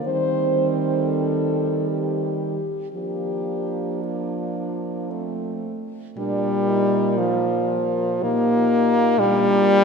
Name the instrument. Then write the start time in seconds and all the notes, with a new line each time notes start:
french horn
0.05 D#3 G3 C4 C5
0.95 A4
1.88 G4
2.92 F3 A#3 D4 G4
4.03 F4
5.10 A3 C4
6.17 A#2 G3 D4 A#4
6.68 D#4
7.15 F3 F4
8.22 A#2 A#3 D#4 G4
9.18 A#2 G3 D4 F4
9.63 G4